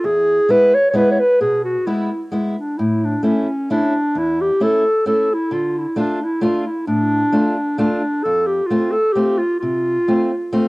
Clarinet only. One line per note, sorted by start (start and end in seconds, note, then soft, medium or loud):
0.06 0.52 G#4 loud
0.50 0.76 B4 loud
0.75 0.90 C#5 medium
0.91 0.98 C#5 medium
0.96 1.10 B4 loud
1.11 1.21 C#5 medium
1.20 1.41 B4 loud
1.41 1.64 G#4 loud
1.65 1.88 F#4 medium
1.86 2.28 E4 medium
2.58 2.79 D4 medium
2.77 3.06 E4 medium
3.05 3.25 D4 medium
3.24 3.70 C#4 medium
3.71 4.19 D4 medium
4.18 4.43 E4 medium
4.41 4.64 G4 medium
4.63 5.07 A4 loud
5.07 5.35 A4 medium
5.34 5.54 E4 medium
5.53 5.80 F4 medium
5.78 5.97 E4 medium
5.99 6.25 D4 medium
6.24 6.44 E4 medium
6.42 6.68 F4 medium
6.66 6.87 E4 medium
6.87 7.75 D4 medium
7.79 8.25 D4 medium
8.23 8.48 A4 medium
8.47 8.68 G4 medium
8.66 8.93 F4 medium
8.92 9.14 A4 medium
9.12 9.39 G4 medium
9.38 9.59 F4 medium
9.60 10.68 F4 medium